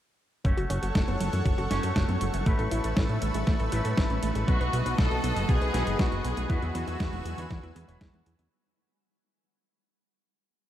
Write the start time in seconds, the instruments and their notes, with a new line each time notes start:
0.44 analog synth bass F#1, synth arpeggio sound F#3, clean electric guitar A3 C#4 F#4 C#5, analog synth pad A4 C#5 F#5 C#6, kick, closed hi-hat
0.57 analog synth bass F#1, synth arpeggio sound F#4, closed hi-hat
0.70 analog synth bass F#1, synth arpeggio sound C#4, closed hi-hat
0.83 analog synth bass F#1, synth arpeggio sound F#4, closed hi-hat
0.95 analog synth bass F#1, synth arpeggio sound A3, kick, snare, closed hi-hat
1.08 analog synth bass F#1, synth arpeggio sound B3, closed hi-hat
1.20 analog synth bass F#1, synth arpeggio sound F#3, closed hi-hat
1.33 analog synth bass F#2, synth arpeggio sound E3, closed hi-hat
1.45 analog synth bass F#1, synth arpeggio sound F#3, kick, closed hi-hat
1.58 analog synth bass F#1, synth arpeggio sound F#4, closed hi-hat
1.70 analog synth bass F#1, clean electric guitar A3 C#4 F#4 C#5, synth arpeggio sound C#4, snare, closed hi-hat
1.83 analog synth bass F#2, synth arpeggio sound F#4, closed hi-hat
1.96 analog synth bass F#1, synth arpeggio sound A3, kick, snare, closed hi-hat
2.08 analog synth bass F#2, synth arpeggio sound B3, closed hi-hat
2.21 analog synth bass F#1, synth arpeggio sound F#3, closed hi-hat
2.34 analog synth bass F#1, synth arpeggio sound E3, closed hi-hat
2.46 analog synth bass A1, clean electric guitar A2 A3 C#4 E4 B4, synth arpeggio sound A3, analog synth pad B4 E5 A5, kick, closed hi-hat
2.59 analog synth bass A1, synth arpeggio sound A4, closed hi-hat
2.71 analog synth bass A1, synth arpeggio sound E4, closed hi-hat
2.84 analog synth bass A1, synth arpeggio sound A4, closed hi-hat
2.97 analog synth bass A1, synth arpeggio sound C#4, kick, snare, closed hi-hat
3.09 analog synth bass A2, synth arpeggio sound C#4, closed hi-hat
3.22 analog synth bass A1, synth arpeggio sound A3, closed hi-hat
3.34 analog synth bass A1, synth arpeggio sound G#3, closed hi-hat
3.47 analog synth bass A1, synth arpeggio sound A3, kick, snare, closed hi-hat
3.60 analog synth bass A1, synth arpeggio sound A4, closed hi-hat
3.72 analog synth bass A1, clean electric guitar A2 A3 C#4 E4 B4, synth arpeggio sound E4, closed hi-hat
3.85 analog synth bass A2, synth arpeggio sound A4, closed hi-hat
3.97 analog synth bass A1, synth arpeggio sound C#4, kick, snare, closed hi-hat
4.10 analog synth bass A1, synth arpeggio sound C#4, closed hi-hat
4.23 analog synth bass A1, synth arpeggio sound A3, closed hi-hat
4.35 analog synth bass A1, synth arpeggio sound G#3, closed hi-hat
4.47 analog synth bass B1, clean electric guitar B2 F#3 B3 D#4 B4, synth arpeggio sound B3, violin section F#4, analog synth pad D#5 F#5 D#6, kick, closed hi-hat
4.61 analog synth bass B1, synth arpeggio sound B4, closed hi-hat
4.73 analog synth bass B1, synth arpeggio sound F#4, closed hi-hat
4.86 analog synth bass B1, synth arpeggio sound B4, closed hi-hat
4.98 analog synth bass B1, synth arpeggio sound D#4, violin section A4, kick, snare, closed hi-hat
5.11 analog synth bass B1, synth arpeggio sound D#4, closed hi-hat
5.24 analog synth bass B1, synth arpeggio sound B3, closed hi-hat
5.36 analog synth bass F#1, synth arpeggio sound A3, closed hi-hat
5.49 analog synth bass B1, synth arpeggio sound B3, violin section G#4, kick, closed hi-hat
5.62 analog synth bass B1, synth arpeggio sound B4, closed hi-hat
5.73 analog synth bass B1, clean electric guitar B2 F#3 B3 D#4 B4, synth arpeggio sound F#4, snare, closed hi-hat
5.87 analog synth bass F#1, synth arpeggio sound B4, closed hi-hat
5.99 analog synth bass B1, synth arpeggio sound D#4, violin section F#4, kick, snare, closed hi-hat
6.12 analog synth bass F#1, synth arpeggio sound D#4, closed hi-hat
6.24 analog synth bass B1, synth arpeggio sound B3, violin section G#4, closed hi-hat
6.37 analog synth bass B1, synth arpeggio sound A3, closed hi-hat
6.49 analog synth bass E2, synth arpeggio sound E3, clean electric guitar F#3 B3 E4 G#4, violin section F#4, analog synth pad B4 G#5 E6, kick, closed hi-hat
6.62 analog synth bass E2, synth arpeggio sound E4, closed hi-hat
6.75 analog synth bass E2, synth arpeggio sound B3, closed hi-hat
6.88 analog synth bass E2, synth arpeggio sound E4, closed hi-hat
7.00 analog synth bass E2, synth arpeggio sound G#3, kick, snare, closed hi-hat
7.13 analog synth bass E1, synth arpeggio sound G#3, closed hi-hat
7.25 analog synth bass E2, synth arpeggio sound E3, closed hi-hat
7.38 analog synth bass E2, synth arpeggio sound D3, closed hi-hat
7.50 analog synth bass E2, synth arpeggio sound E3, kick, snare, closed hi-hat
7.63 analog synth bass E2, synth arpeggio sound E4, closed hi-hat
7.75 analog synth bass E2, synth arpeggio sound B3, closed hi-hat
7.88 analog synth bass E1, clean electric guitar F#3 B3 E4 C#5, synth arpeggio sound E4, closed hi-hat
8.01 analog synth bass E2, synth arpeggio sound G#3, kick, snare, closed hi-hat
8.13 analog synth bass E2, synth arpeggio sound G#3, closed hi-hat
8.26 analog synth bass E2, synth arpeggio sound E3, closed hi-hat
8.39 analog synth bass E2, synth arpeggio sound D3, closed hi-hat